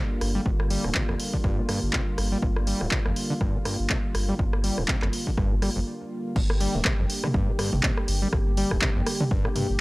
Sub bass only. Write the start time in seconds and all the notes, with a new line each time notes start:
0.21 G1
0.46 G1
0.84 D1
1.09 G1
1.44 G1
1.83 G1
2.18 G1
2.42 G1
2.81 D1
3.06 G1
3.41 G1
3.79 G1
4.15 G1
4.39 G1
4.78 D1
5.02 G1
5.38 G1
5.76 G1
6.36 G1
6.75 D1
6.99 G1
7.34 G1
7.73 G1
8.08 G1
8.33 G1
8.71 D1
8.96 G1
9.31 G1
9.70 G1